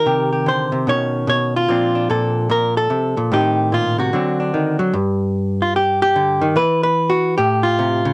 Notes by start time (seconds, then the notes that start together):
Already playing: D#3 A#4
0.06 C3 G4
0.33 G4
0.46 D3 C5
0.72 C3
0.87 B2 D#3 C#4 C#5
1.27 B2 C#5
1.56 F4
1.68 A#2 F3 C4 D4
1.95 D4
2.10 A#2 A4
2.50 A#2 A#4
2.77 A4
2.90 C3
3.17 A#2
3.31 A2 D#3 C4 D#4 G4
3.72 A#2 F4
3.98 C3 F#4
4.13 D3 F#3 C4 D4
4.40 D4
4.54 D#3
4.79 F#3
4.94 G2
5.62 F4
5.76 G4
6.02 G4
6.16 D3
6.42 D#3
6.56 E3 B4
6.83 B4
7.10 F#4
7.37 A2 G4
7.63 F4
7.79 C3
8.05 C#3